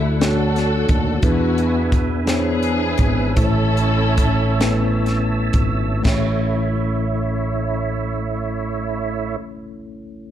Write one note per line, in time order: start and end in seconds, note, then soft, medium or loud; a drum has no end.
0.00 0.85 D2 medium
0.00 0.17 D3 medium
0.00 0.19 A3 medium
0.00 0.20 A3 medium
0.00 0.20 D4 medium
0.00 1.21 D4 medium
0.00 0.22 E4 medium
0.00 0.21 F#4 medium
0.00 0.21 A4 medium
0.00 1.21 A4 medium
0.00 1.24 D5 medium
0.00 1.20 F#5 medium
0.20 0.82 A3 medium
0.20 0.82 D4 medium
0.20 1.20 D4 medium
0.20 0.82 F#4 medium
0.20 0.83 A4 medium
0.20 0.83 C#5 medium
0.20 snare medium
0.20 closed hi-hat medium
0.25 1.20 F#4 medium
0.25 1.25 A4 medium
0.56 snare soft
0.56 closed hi-hat soft
0.89 1.20 D#2 medium
0.89 kick medium
0.89 closed hi-hat medium
1.22 2.95 E2 medium
1.22 2.23 E3 medium
1.22 1.85 B3 medium
1.22 2.24 B3 medium
1.22 1.85 D4 medium
1.22 2.24 D4 medium
1.22 1.85 E4 medium
1.22 1.85 G#4 medium
1.22 1.85 B4 medium
1.22 3.35 B4 medium
1.22 3.35 E5 medium
1.22 3.35 G#5 medium
1.22 kick loud
1.22 closed hi-hat medium
1.28 1.94 F#4 medium
1.58 closed hi-hat soft
1.92 kick medium
1.92 closed hi-hat medium
2.26 2.92 B3 medium
2.26 3.34 B3 medium
2.26 2.92 D4 medium
2.26 3.34 D4 medium
2.26 2.92 E4 medium
2.26 2.92 G#4 medium
2.26 3.34 G#4 medium
2.26 2.34 C5 soft
2.26 snare medium
2.26 closed hi-hat medium
2.34 2.96 C#5 medium
2.63 closed hi-hat soft
2.98 3.34 G#1 medium
2.98 kick medium
2.98 closed hi-hat medium
3.36 5.49 A1 medium
3.36 4.56 A2 soft
3.36 4.09 A3 medium
3.36 4.09 C#4 medium
3.36 5.02 C#4 medium
3.36 4.09 E4 medium
3.36 5.02 E4 medium
3.36 5.01 A4 medium
3.36 4.10 A4 medium
3.36 3.45 C5 medium
3.36 6.03 C#5 medium
3.36 6.02 E5 medium
3.36 6.02 A5 medium
3.36 6.02 E6 medium
3.36 kick medium
3.36 closed hi-hat medium
3.44 4.13 C#5 medium
3.77 closed hi-hat soft
4.17 kick medium
4.17 closed hi-hat medium
4.60 5.44 A3 medium
4.60 4.68 B3 soft
4.60 5.44 E4 medium
4.60 5.45 A4 medium
4.60 5.45 B4 medium
4.60 snare medium
4.60 closed hi-hat medium
4.67 5.47 C#4 medium
5.06 snare soft
5.06 closed hi-hat soft
5.53 6.01 G#1 medium
5.53 kick medium
5.53 closed hi-hat medium
6.01 9.35 A1 medium
6.01 9.32 A3 medium
6.01 9.33 C#4 medium
6.01 9.35 E4 medium
6.01 kick medium
6.01 crash medium
6.06 9.37 A3 medium
6.06 9.36 E4 soft
6.06 9.37 A4 medium
6.06 9.36 C#5 soft
6.06 9.38 C#5 medium
6.06 9.36 E5 medium
6.06 snare medium